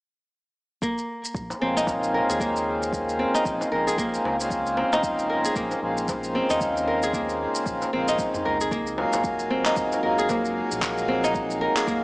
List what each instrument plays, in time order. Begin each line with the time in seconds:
0.82 kora A#3, kick, shaker
0.98 shaker
1.25 shaker
1.35 analog synth bass A#1, kick, shaker
1.50 darbuka ka, shaker
1.59 analog synth bass A#1, harmonium C#3 G#3 A#3 C4, kora C4
1.63 harmonium F4
1.77 kora D#4, shaker
1.87 kick, darbuka tek, shaker
2.04 shaker
2.14 kora A#4
2.30 analog synth bass D#2, kora G#4, shaker
2.40 kora A#3, kick, shaker
2.56 shaker
2.83 shaker
2.93 kick, shaker
3.09 shaker
3.19 kora C4
3.34 kora D#4, darbuka ka, shaker
3.45 analog synth bass A#1, kick, shaker
3.61 darbuka ka, shaker
3.70 analog synth bass A#1, harmonium C#3 G#3 A#3 C4, kora A#4
3.74 harmonium F4
3.87 kora G#4, shaker
3.98 kora A#3, kick, shaker
4.14 shaker
4.24 analog synth bass C#2, darbuka ka
4.38 harmonium C#3 G#3 A#3 C4 F4, shaker
4.50 kick, shaker
4.67 shaker
4.77 kora C4, darbuka tek
4.92 analog synth bass F1, kora D#4, darbuka tek, shaker
5.03 kick, shaker
5.19 shaker
5.30 kora A#4
5.45 kora G#4, shaker
5.56 analog synth bass A#1, kora A#3, kick, shaker
5.71 darbuka ka, shaker
5.80 analog synth bass A#1, harmonium C#3 G#3 A#3 C4 F4
5.97 shaker
6.08 kick, darbuka tek, shaker
6.24 shaker
6.35 kora C4
6.50 analog synth bass D#2, kora D#4, shaker
6.61 kick, shaker
6.77 shaker
6.88 kora A#4
7.03 kora G#4, shaker
7.13 kora A#3, kick, shaker
7.29 shaker
7.55 darbuka ka, shaker
7.66 analog synth bass A#1, kick, shaker
7.82 darbuka ka, darbuka tek, shaker
7.91 analog synth bass A#1, harmonium C#3 G#3 A#3 C4 F4, kora C4
8.08 kora D#4, shaker
8.19 kick, shaker
8.34 darbuka dum, shaker
8.45 analog synth bass C#2, kora A#4, darbuka ka
8.61 kora G#4, shaker
8.71 kora A#3, kick, shaker
8.87 shaker
8.95 harmonium F#3 G#3 A#3, darbuka tek
9.00 harmonium F4
9.13 analog synth bass F#1, darbuka tek, shaker
9.24 kick, shaker
9.39 shaker
9.50 kora C4
9.66 kora D#4, clap, shaker
9.76 analog synth bass F#1, kick, shaker
9.92 darbuka ka, shaker
10.01 analog synth bass F#1, harmonium F#3 G#3 A#3 F4, kora A#4
10.18 kora G#4, shaker
10.29 kora A#3, kick, darbuka tek, shaker
10.45 shaker
10.72 analog synth bass A#1, shaker
10.82 kick, clap, shaker
10.98 shaker
11.08 kora C4
11.24 kora D#4, shaker
11.35 kick, shaker
11.51 shaker
11.61 kora A#4
11.77 kora G#4, clap, darbuka ka, shaker
11.87 analog synth bass F#1, kora A#3, kick, shaker